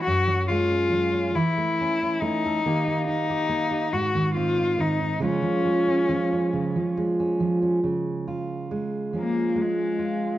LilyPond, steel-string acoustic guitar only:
\new Staff \with { instrumentName = "Steel-string acoustic guitar" } { \time 6/8 \key des \major \tempo 4. = 46 << { r8 aes16 des'8 des'16 r8 cis'16 cis'8 a'16 | <bes ees' g'>8 ees'16 g'8 g'16 r8 c'16 ees'8 ees'16 | <f aes des' f'>8 aes16 des'8 des'8. aes16 des'8 des'16 | r8 f'8 aes8 des'8 aes8 f'8 | } \\ { ges,16 ges8. ges8 e16 a8. a8 | ees16 bes8. bes8 aes,16 ees8. ees8 | des16 f8. f8 des16 f8. f8 | des4. f4. | } >> }